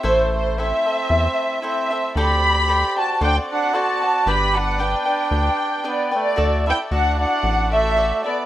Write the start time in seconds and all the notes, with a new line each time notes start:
Already playing: E4 C5
0.03 A1 A3 E4 A4 C5 E5
0.08 A3
0.33 A3 C5
0.58 C4 E4 A4 C5 E5
0.85 A4 C5 E5
1.10 E2
1.62 C4 E4 A4 C5 E5
1.67 E5
1.91 A4 C5 E5
2.16 D2 C4 G4 A4 C5 D5 G5 B5
2.68 A4 C5 D5 G5
2.96 F#4 C5 D5 G5 A5
3.21 D2 D4 F#4 A4 C5 D5 F#5 G5
3.52 D4 F#5
3.73 F#4 A4 C5 D5 F#5 A5
4.02 C5 D5 F#5
4.25 G1 B3 D4 G4 B4 D5 G5 B5
4.56 D4 F#5
4.78 D4 B4 D5 G5
5.05 B4 D5 G5
5.31 D2
5.84 B3 D4 B4 D5 G5
5.88 D5
6.11 A3 B4 D5 G5
6.17 D5
6.36 D2 E4 F#4 A4 D5 E5
6.66 E4 A4 D5 E5 G5
6.91 D2 D4 F#4 A4 D5 E5 F#5
7.19 D4 F#5
7.43 A1
7.71 A3 A4 D5 E5
7.97 F#4 A4 D5 E5
8.23 B3 A4 D5 E5